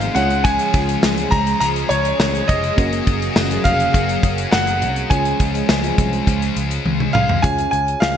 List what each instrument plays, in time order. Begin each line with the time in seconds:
Already playing: analog synth pad C3 F3 G#3 D#4, distorted electric guitar G#3 D#4 G#4, fm electric piano C4 D#4 F4 G#4 C5, grand piano F5
0.01 closed hi-hat
0.14 picked electric bass C#2, analog synth pad C#3 F3 G#4, fm electric piano G#3 C#4 F4 G#4 C#5, distorted electric guitar G#3 C#4, grand piano F#5, closed hi-hat
0.30 closed hi-hat
0.44 distorted electric guitar C#3 G#3 C#4, grand piano G#5, kick, closed hi-hat
0.59 closed hi-hat
0.74 picked electric bass C#2, kick, closed hi-hat
0.89 closed hi-hat
1.03 picked electric bass C#2, snare, tambourine
1.18 closed hi-hat
1.31 picked electric bass C#2, grand piano A#5, kick, closed hi-hat
1.47 closed hi-hat
1.60 picked electric bass C#2, distorted electric guitar C#3 G#3 C#4, grand piano A#5, closed hi-hat
1.76 closed hi-hat
1.89 picked electric bass C#2, grand piano C#5, closed hi-hat
2.05 closed hi-hat
2.20 picked electric bass C#2, snare, tambourine
2.35 closed hi-hat
2.48 picked electric bass F1, distorted electric guitar G#3 C#4, grand piano D#5, kick, closed hi-hat
2.64 closed hi-hat
2.76 picked electric bass F#1, distorted electric guitar F#3 C#4 F#4, analog synth pad F#3 A#3, fm electric piano A#3 C#4 F#4 A#4, kick, closed hi-hat
2.93 closed hi-hat
3.07 picked electric bass F#1, kick, closed hi-hat
3.22 closed hi-hat
3.35 picked electric bass F#1, distorted electric guitar F#3 C#4 F#4, snare, tambourine
3.51 closed hi-hat
3.64 picked electric bass F1, grand piano F5, kick, closed hi-hat
3.80 closed hi-hat
3.93 picked electric bass F#1, distorted electric guitar F#3 C#4 F#4, kick, closed hi-hat
4.09 closed hi-hat
4.23 picked electric bass F#1, kick, closed hi-hat
4.38 closed hi-hat
4.51 picked electric bass F#1, grand piano F#5, snare, tambourine
4.67 closed hi-hat
4.82 picked electric bass C2, closed hi-hat
4.96 closed hi-hat
5.09 picked electric bass C#2, distorted electric guitar C#3 G#3 C#4, analog synth pad F3 G#3, fm electric piano G#3 C#4 F4 G#4 C#5, grand piano G#5, kick, closed hi-hat
5.25 closed hi-hat
5.40 picked electric bass C#2, kick, closed hi-hat
5.55 closed hi-hat
5.69 picked electric bass C#2, distorted electric guitar C#3 G#3 C#4, snare, tambourine
5.84 closed hi-hat
5.98 picked electric bass C2, kick, closed hi-hat
6.13 closed hi-hat
6.27 picked electric bass C#2, distorted electric guitar C#3 G#3 C#4, kick, closed hi-hat
6.42 closed hi-hat
6.57 picked electric bass C#2, closed hi-hat
6.71 closed hi-hat
6.86 picked electric bass C#2, high tom
7.00 mid tom
7.13 picked electric bass C2, distorted electric guitar G#3 C#4, grand piano F5, mid tom
7.29 floor tom
7.42 picked electric bass C#2, fm electric piano C#4 F4 G#4 C#5, grand piano G#5, kick, closed hi-hat
7.58 closed hi-hat
7.71 picked electric bass C#2, grand piano G#5, closed hi-hat
7.88 closed hi-hat
8.00 picked electric bass C#2, grand piano F5, snare